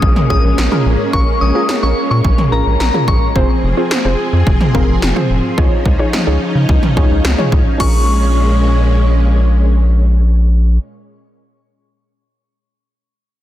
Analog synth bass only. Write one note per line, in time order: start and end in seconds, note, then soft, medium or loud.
0.02 0.13 A#1 loud
0.30 0.41 A#1 loud
0.44 0.54 A#1 loud
0.58 0.68 A#1 loud
0.86 0.96 A#1 loud
1.13 1.24 A#1 loud
1.41 1.52 A#1 loud
1.83 1.93 A#1 medium
2.11 2.21 A#2 loud
2.25 2.35 A#1 loud
2.52 2.63 A#1 loud
2.66 2.77 A#1 medium
2.80 2.90 A#1 loud
3.08 3.18 A#1 medium
3.36 3.46 F1 loud
3.63 3.74 F1 loud
4.05 4.15 F1 loud
4.33 4.43 F2 medium
4.47 4.57 F1 loud
4.75 4.85 F1 loud
4.88 4.99 F1 medium
5.02 5.13 F1 loud
5.30 5.40 F1 medium
5.58 5.68 C#2 loud
5.86 5.96 C#2 loud
6.27 6.38 C#2 loud
6.55 6.66 C#3 medium
6.69 6.79 C#2 loud
6.97 7.07 C#2 loud
7.11 7.21 C#2 loud
7.25 7.35 C#2 loud
7.52 7.63 C#2 loud
7.80 10.78 A#1 medium